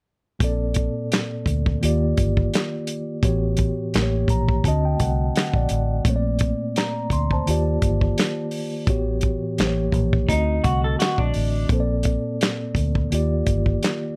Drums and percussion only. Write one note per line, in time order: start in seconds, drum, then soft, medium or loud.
0.40 kick loud
0.40 closed hi-hat medium
0.74 kick medium
0.74 closed hi-hat medium
1.12 snare loud
1.12 clap medium
1.12 closed hi-hat medium
1.46 kick medium
1.46 closed hi-hat medium
1.66 kick medium
1.83 closed hi-hat medium
2.17 kick medium
2.17 closed hi-hat medium
2.37 kick medium
2.54 snare medium
2.54 clap medium
2.54 closed hi-hat medium
2.87 closed hi-hat medium
3.23 kick loud
3.23 closed hi-hat medium
3.57 kick medium
3.57 closed hi-hat medium
3.94 snare loud
3.94 clap medium
3.94 closed hi-hat medium
4.28 kick medium
4.28 closed hi-hat medium
4.49 kick medium
4.64 kick medium
4.64 closed hi-hat medium
5.00 kick medium
5.00 closed hi-hat medium
5.36 snare medium
5.36 clap medium
5.36 closed hi-hat medium
5.54 kick medium
5.69 closed hi-hat medium
6.05 kick loud
6.05 closed hi-hat medium
6.39 kick medium
6.39 closed hi-hat medium
6.76 snare loud
6.76 clap medium
6.76 closed hi-hat medium
7.10 kick medium
7.10 closed hi-hat medium
7.31 kick medium
7.47 closed hi-hat medium
7.82 kick medium
7.82 closed hi-hat medium
8.01 kick medium
8.18 snare medium
8.18 clap medium
8.18 closed hi-hat medium
8.51 open hi-hat soft
8.87 kick loud
8.87 closed hi-hat medium
9.21 kick medium
9.21 closed hi-hat medium
9.58 snare loud
9.58 clap medium
9.58 closed hi-hat medium
9.92 kick medium
9.92 closed hi-hat medium
10.13 kick medium
10.29 kick medium
10.29 closed hi-hat medium
10.64 kick medium
10.64 closed hi-hat medium
11.00 snare medium
11.00 clap medium
11.00 closed hi-hat medium
11.18 kick medium
11.34 open hi-hat soft
11.69 kick loud
11.69 closed hi-hat medium
12.03 kick medium
12.03 closed hi-hat medium
12.41 snare loud
12.41 clap medium
12.41 closed hi-hat medium
12.75 kick medium
12.75 closed hi-hat soft
12.95 kick medium
13.12 closed hi-hat medium
13.46 kick medium
13.46 closed hi-hat medium
13.66 kick medium
13.83 snare medium
13.83 clap medium
13.83 closed hi-hat medium